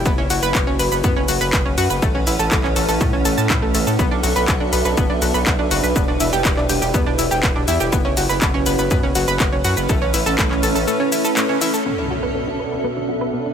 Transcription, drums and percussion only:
0.06 kick loud
0.06 ride medium
0.06 shaker medium
0.30 open hi-hat loud
0.30 ride medium
0.30 shaker medium
0.43 shaker medium
0.55 kick loud
0.55 clap loud
0.55 ride medium
0.55 shaker medium
0.79 open hi-hat loud
0.79 ride medium
0.79 shaker medium
0.92 shaker medium
1.04 kick loud
1.04 ride medium
1.04 shaker medium
1.28 open hi-hat loud
1.28 ride medium
1.28 shaker medium
1.41 shaker medium
1.53 kick loud
1.53 clap loud
1.53 ride medium
1.53 shaker medium
1.78 open hi-hat loud
1.78 ride medium
1.78 shaker medium
1.90 shaker medium
2.02 kick loud
2.02 ride medium
2.02 shaker medium
2.27 open hi-hat loud
2.27 ride medium
2.27 shaker medium
2.39 shaker medium
2.52 kick loud
2.52 clap loud
2.52 ride medium
2.52 shaker medium
2.64 clap soft
2.76 open hi-hat loud
2.76 ride medium
2.76 shaker medium
2.89 open hi-hat medium
2.89 shaker medium
3.01 kick loud
3.01 ride medium
3.01 shaker medium
3.25 open hi-hat loud
3.25 ride medium
3.25 shaker medium
3.38 shaker medium
3.50 kick loud
3.50 clap loud
3.50 ride soft
3.50 shaker medium
3.75 open hi-hat loud
3.75 ride medium
3.75 shaker medium
3.87 shaker medium
3.99 kick loud
3.99 ride medium
3.99 shaker medium
4.24 open hi-hat loud
4.24 ride medium
4.24 shaker medium
4.36 shaker medium
4.48 kick loud
4.48 clap loud
4.48 ride medium
4.48 shaker medium
4.73 open hi-hat loud
4.73 ride medium
4.73 shaker medium
4.85 shaker medium
4.97 kick loud
4.97 ride medium
4.97 shaker medium
5.22 open hi-hat loud
5.22 ride medium
5.22 shaker medium
5.34 shaker medium
5.46 kick loud
5.46 clap loud
5.46 ride medium
5.46 shaker medium
5.71 open hi-hat loud
5.71 ride medium
5.71 shaker medium
5.84 shaker medium
5.96 kick loud
5.96 ride medium
5.96 shaker medium
6.20 open hi-hat loud
6.20 ride medium
6.20 shaker medium
6.33 shaker medium
6.45 kick loud
6.45 clap loud
6.45 ride medium
6.45 shaker medium
6.57 clap soft
6.69 open hi-hat loud
6.69 ride medium
6.69 shaker medium
6.82 open hi-hat medium
6.82 shaker medium
6.94 kick loud
6.94 ride medium
6.94 shaker medium
7.19 open hi-hat loud
7.19 ride medium
7.19 shaker medium
7.31 shaker medium
7.43 kick loud
7.43 clap loud
7.43 ride medium
7.43 shaker medium
7.68 open hi-hat loud
7.68 ride medium
7.68 shaker medium
7.80 shaker medium
7.93 kick loud
7.93 ride medium
7.93 shaker medium
8.17 open hi-hat loud
8.17 ride medium
8.17 shaker medium
8.30 shaker medium
8.42 kick loud
8.42 clap loud
8.42 ride medium
8.42 shaker medium
8.66 open hi-hat loud
8.66 ride medium
8.66 shaker medium
8.79 shaker medium
8.91 kick loud
8.91 ride medium
8.91 shaker medium
9.15 open hi-hat loud
9.15 ride medium
9.15 shaker medium
9.28 shaker medium
9.40 kick loud
9.40 clap loud
9.40 ride medium
9.40 shaker medium
9.64 open hi-hat loud
9.64 ride medium
9.64 shaker medium
9.77 shaker medium
9.89 kick loud
9.89 ride medium
9.89 shaker medium
10.14 open hi-hat loud
10.14 ride medium
10.14 shaker medium
10.26 shaker medium
10.38 kick loud
10.38 clap loud
10.38 ride medium
10.38 shaker medium
10.51 clap soft
10.63 open hi-hat loud
10.63 ride medium
10.63 shaker medium
10.76 open hi-hat medium
10.76 shaker medium
10.88 ride medium
10.88 shaker medium
11.12 open hi-hat loud
11.12 ride medium
11.12 shaker medium
11.25 shaker medium
11.37 clap loud
11.37 ride medium
11.37 shaker medium
11.61 open hi-hat loud
11.61 ride medium
11.61 shaker medium
11.74 shaker medium

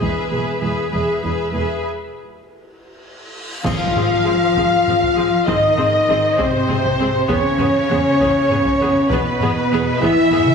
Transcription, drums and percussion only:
0.01 taiko medium
3.65 concert bass drum medium
3.65 taiko loud
3.65 crash medium
3.95 taiko low-mid medium
4.56 taiko medium
4.87 taiko low-mid medium
5.02 taiko medium
5.48 taiko loud
5.78 taiko low-mid medium
6.38 taiko medium
6.69 taiko low-mid medium
6.84 taiko medium
7.28 taiko medium
7.59 taiko low-mid medium
8.19 taiko medium
8.49 taiko low-mid medium
8.65 taiko medium
9.10 taiko loud
9.40 taiko low-mid medium
10.01 taiko medium
10.31 taiko low-mid medium
10.46 taiko mid loud

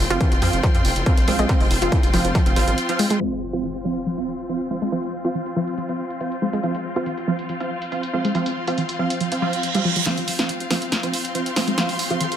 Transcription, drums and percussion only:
0.10 closed hi-hat medium
0.21 kick loud
0.21 closed hi-hat medium
0.32 closed hi-hat medium
0.42 open hi-hat loud
0.53 closed hi-hat medium
0.63 kick loud
0.63 closed hi-hat medium
0.75 closed hi-hat medium
0.85 open hi-hat loud
0.96 closed hi-hat medium
1.06 kick loud
1.06 closed hi-hat medium
1.17 closed hi-hat medium
1.28 open hi-hat loud
1.39 closed hi-hat medium
1.49 kick loud
1.49 closed hi-hat medium
1.60 open hi-hat medium
1.71 open hi-hat loud
1.82 closed hi-hat medium
1.92 kick loud
1.92 closed hi-hat medium
2.03 closed hi-hat medium
2.14 open hi-hat medium
2.25 closed hi-hat medium
2.35 kick loud
2.35 closed hi-hat medium
2.46 closed hi-hat medium
2.56 open hi-hat loud
2.68 closed hi-hat medium
2.78 closed hi-hat medium
2.89 closed hi-hat medium
2.99 open hi-hat loud
3.10 closed hi-hat medium
3.21 closed hi-hat medium
3.21 crash medium
3.53 closed hi-hat medium
3.64 closed hi-hat medium
3.75 closed hi-hat medium
3.96 closed hi-hat medium
4.06 closed hi-hat medium
4.18 closed hi-hat medium
4.39 closed hi-hat medium
4.49 closed hi-hat medium
4.60 closed hi-hat medium
4.82 closed hi-hat medium
4.92 closed hi-hat medium
5.03 closed hi-hat medium
5.25 closed hi-hat medium
5.35 closed hi-hat medium
5.46 closed hi-hat medium
5.67 closed hi-hat medium
5.78 closed hi-hat medium
5.89 closed hi-hat medium
6.10 closed hi-hat medium
6.21 closed hi-hat medium
6.32 closed hi-hat medium
6.53 closed hi-hat medium
6.63 closed hi-hat medium
6.75 closed hi-hat medium
6.96 closed hi-hat medium
7.06 closed hi-hat medium
7.17 closed hi-hat medium
7.39 closed hi-hat medium
7.49 closed hi-hat medium
7.60 closed hi-hat medium
7.82 closed hi-hat medium
7.92 closed hi-hat medium
8.03 closed hi-hat medium
8.25 closed hi-hat medium
8.35 closed hi-hat medium
8.46 closed hi-hat medium
8.68 closed hi-hat medium
8.78 closed hi-hat medium
8.89 closed hi-hat medium
9.10 closed hi-hat medium
9.21 closed hi-hat medium
9.32 closed hi-hat medium
9.53 closed hi-hat medium
9.63 closed hi-hat medium
9.75 closed hi-hat medium
9.96 closed hi-hat medium
10.06 snare soft
10.06 closed hi-hat medium
10.18 closed hi-hat medium
10.28 open hi-hat loud
10.39 snare soft
10.39 closed hi-hat medium
10.49 closed hi-hat medium
10.60 closed hi-hat medium
10.71 snare medium
10.71 open hi-hat loud
10.82 closed hi-hat medium
10.92 snare medium
10.92 closed hi-hat medium
11.03 closed hi-hat medium
11.14 open hi-hat loud
11.25 closed hi-hat medium
11.35 closed hi-hat medium
11.46 closed hi-hat medium
11.56 snare medium
11.56 open hi-hat loud
11.68 closed hi-hat medium
11.78 snare medium
11.78 closed hi-hat medium
11.89 open hi-hat medium
11.99 open hi-hat loud
12.10 closed hi-hat medium
12.21 closed hi-hat medium
12.32 closed hi-hat medium

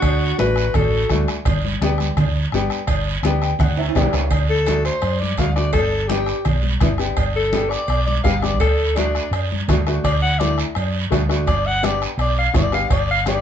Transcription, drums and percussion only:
0.02 bombo low medium
0.02 bombo rim medium
0.02 cowbell loud
0.02 high conga soft
0.02 long guiro medium
0.39 bombo rim medium
0.39 high conga loud
0.39 short guiro medium
0.56 bombo rim medium
0.56 short guiro medium
0.74 bombo low medium
0.74 bombo rim medium
0.74 cowbell medium
0.74 low conga medium
0.74 long guiro medium
0.93 high conga soft
1.10 bombo low medium
1.10 bombo rim medium
1.10 high conga medium
1.10 short guiro medium
1.28 bombo rim medium
1.28 short guiro medium
1.45 bombo low medium
1.45 bombo rim medium
1.45 cowbell loud
1.45 high conga soft
1.45 low conga medium
1.45 long guiro medium
1.65 high conga medium
1.82 bombo rim medium
1.82 high conga loud
1.82 short guiro medium
1.98 bombo rim medium
1.98 high conga medium
1.98 short guiro medium
2.17 bombo low medium
2.17 bombo rim medium
2.17 cowbell medium
2.17 low conga medium
2.17 long guiro medium
2.36 high conga soft
2.52 bombo rim medium
2.52 high conga medium
2.52 short guiro medium
2.70 bombo rim medium
2.70 short guiro medium
2.87 bombo low medium
2.87 bombo rim medium
2.87 cowbell loud
2.87 high conga soft
2.87 long guiro medium
3.23 bombo rim medium
3.23 high conga loud
3.23 short guiro medium
3.42 bombo rim medium
3.42 short guiro medium
3.59 bombo low medium
3.59 bombo rim medium
3.59 cowbell medium
3.59 low conga medium
3.59 long guiro medium
3.77 high conga soft
3.77 high timbale medium
3.89 high timbale medium
3.95 bombo low medium
3.95 bombo rim medium
3.95 high conga medium
3.95 low conga medium
3.95 short guiro medium
4.01 low timbale medium
4.13 bombo rim medium
4.13 low timbale medium
4.13 short guiro medium
4.31 bombo low medium
4.31 bombo rim medium
4.31 cowbell loud
4.31 high conga soft
4.31 long guiro medium
4.51 high conga soft
4.66 bombo rim medium
4.66 cowbell medium
4.66 high conga loud
4.66 short guiro medium
4.85 bombo rim medium
4.85 short guiro medium
5.02 bombo rim medium
5.02 cowbell medium
5.02 long guiro medium
5.22 high conga medium
5.37 bombo low medium
5.37 bombo rim medium
5.37 cowbell medium
5.37 high conga medium
5.37 short guiro medium
5.56 bombo rim medium
5.56 short guiro medium
5.73 bombo low medium
5.73 bombo rim medium
5.73 cowbell loud
5.73 high conga soft
5.73 long guiro medium
5.93 high conga soft
6.09 bombo rim medium
6.09 cowbell medium
6.09 high conga loud
6.09 short guiro medium
6.26 bombo rim medium
6.26 short guiro medium
6.45 bombo rim medium
6.45 cowbell medium
6.45 low conga medium
6.45 long guiro medium
6.63 high conga medium
6.80 bombo low medium
6.80 bombo rim medium
6.80 cowbell medium
6.80 high conga medium
6.80 low conga medium
6.80 short guiro medium
6.98 bombo rim medium
6.98 short guiro medium
7.17 bombo low medium
7.17 bombo rim medium
7.17 cowbell loud
7.17 high conga soft
7.17 long guiro medium
7.36 high conga soft
7.53 bombo rim medium
7.53 cowbell medium
7.53 high conga loud
7.53 short guiro medium
7.71 bombo rim medium
7.71 short guiro medium
7.88 bombo rim medium
7.88 cowbell medium
7.88 long guiro medium
8.08 high conga medium
8.24 bombo low medium
8.24 bombo rim medium
8.24 cowbell medium
8.24 high conga medium
8.24 short guiro medium
8.43 bombo rim medium
8.43 high conga medium
8.43 short guiro medium
8.60 bombo low medium
8.60 bombo rim medium
8.60 cowbell loud
8.60 high conga soft
8.60 long guiro medium
8.80 high conga soft
8.96 bombo rim medium
8.96 cowbell medium
8.96 high conga loud
8.96 short guiro medium
9.15 bombo rim medium
9.15 short guiro medium
9.33 bombo rim medium
9.33 cowbell medium
9.33 long guiro medium
9.52 high conga medium
9.68 bombo low medium
9.68 bombo rim medium
9.68 cowbell medium
9.68 high conga medium
9.68 low conga medium
9.68 low timbale medium
9.68 short guiro medium
9.87 bombo rim medium
9.87 short guiro medium
10.04 bombo low medium
10.04 bombo rim medium
10.04 cowbell loud
10.04 long guiro medium
10.23 high conga soft
10.40 bombo rim medium
10.40 cowbell medium
10.40 high conga loud
10.40 short guiro medium
10.58 bombo rim medium
10.58 short guiro medium
10.75 bombo rim medium
10.75 cowbell medium
10.75 long guiro medium
11.11 bombo low medium
11.11 bombo rim medium
11.11 cowbell medium
11.11 high conga medium
11.11 low timbale medium
11.11 short guiro medium
11.30 bombo rim medium
11.30 short guiro medium
11.47 bombo low medium
11.47 bombo rim medium
11.47 cowbell loud
11.47 long guiro medium
11.66 high conga soft
11.83 bombo rim medium
11.83 cowbell medium
11.83 high conga loud
11.83 short guiro medium
12.02 bombo rim medium
12.02 short guiro medium
12.19 bombo rim medium
12.19 cowbell medium
12.19 long guiro medium
12.54 bombo low medium
12.54 bombo rim medium
12.54 cowbell medium
12.54 high conga medium
12.54 low conga medium
12.54 low timbale medium
12.54 short guiro medium
12.72 bombo rim medium
12.72 short guiro medium
12.90 bombo low medium
12.90 bombo rim medium
12.90 cowbell loud
12.90 high conga soft
12.90 long guiro medium
13.10 high conga soft
13.26 bombo rim medium
13.26 cowbell medium
13.26 high conga loud
13.26 short guiro medium

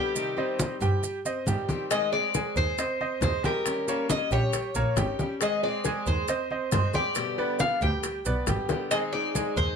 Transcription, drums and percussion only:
0.16 high conga soft
0.16 maracas medium
0.37 high conga soft
0.59 high conga medium
0.59 maracas medium
0.81 high conga soft
0.81 maracas soft
1.03 high conga soft
1.03 maracas medium
1.25 high conga soft
1.25 maracas medium
1.47 high conga medium
1.47 maracas medium
1.69 high conga medium
1.69 maracas soft
1.91 high bongo medium
1.91 high conga soft
1.91 maracas medium
2.13 high conga soft
2.34 high bongo medium
2.34 high conga medium
2.34 maracas medium
2.56 high conga soft
2.56 maracas soft
2.78 high bongo medium
2.78 high conga soft
2.78 maracas medium
3.01 high conga soft
3.22 high bongo medium
3.22 low bongo medium
3.22 high conga medium
3.22 maracas medium
3.44 high conga medium
3.44 maracas soft
3.66 high bongo medium
3.66 high conga soft
3.66 maracas medium
3.88 high conga soft
3.88 maracas soft
4.09 high bongo medium
4.09 high conga medium
4.09 maracas medium
4.31 high bongo soft
4.31 high conga soft
4.31 maracas soft
4.53 high bongo medium
4.53 high conga soft
4.53 maracas medium
4.75 high bongo soft
4.75 high conga soft
4.75 maracas medium
4.97 high bongo medium
4.97 low bongo medium
4.97 high conga medium
4.97 maracas medium
5.19 high bongo soft
5.19 high conga medium
5.19 maracas soft
5.41 high bongo medium
5.41 high conga soft
5.41 maracas medium
5.63 high conga soft
5.84 high bongo medium
5.84 high conga medium
5.84 maracas medium
6.06 high conga soft
6.06 maracas soft
6.28 high bongo medium
6.28 high conga soft
6.28 maracas medium
6.51 high conga soft
6.72 high bongo medium
6.72 low bongo medium
6.72 high conga medium
6.72 maracas medium
6.93 high conga medium
6.93 maracas soft
7.15 high bongo medium
7.15 high conga soft
7.15 maracas medium
7.38 high conga soft
7.59 high bongo medium
7.59 high conga medium
7.59 maracas medium
7.81 high bongo soft
7.81 high conga soft
7.81 maracas soft
8.03 high bongo medium
8.03 high conga soft
8.03 maracas medium
8.25 high bongo soft
8.25 high conga soft
8.25 maracas medium
8.47 high bongo medium
8.47 low bongo medium
8.47 high conga medium
8.47 maracas medium
8.69 high bongo medium
8.69 high conga medium
8.69 maracas soft
8.91 high bongo medium
8.91 high conga soft
8.91 maracas medium
9.14 high conga soft
9.35 high bongo medium
9.35 high conga medium
9.35 maracas medium
9.57 high conga soft
9.57 maracas soft

